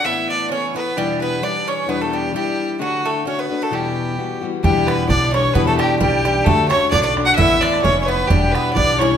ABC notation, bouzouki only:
X:1
M:2/4
L:1/16
Q:"Swing" 1/4=131
K:Edor
V:1 name="Bouzouki"
E2 D2 C2 B,2 | G,2 B,2 D2 C2 | B, A, G,2 G,4 | F,2 A,2 C B,2 A, |
G,6 z2 | G,2 B,2 D2 C2 | B, A, G,2 G,2 G,2 | A,2 C2 D D2 F |
E2 D2 C2 B,2 | G,2 B,2 D2 C2 |]